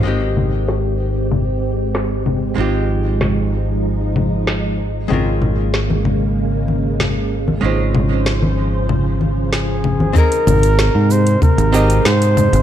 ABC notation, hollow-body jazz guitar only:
X:1
M:4/4
L:1/8
Q:1/4=95
K:Ab
V:1 name="Hollow-body jazz guitar"
[A,B,CEG]8 | [A,CEFG]8 | [A,CDFB]8 | [A,DEFc]8 |
[CEGAB]4- [CEGAB] [CEGAe] z2 |]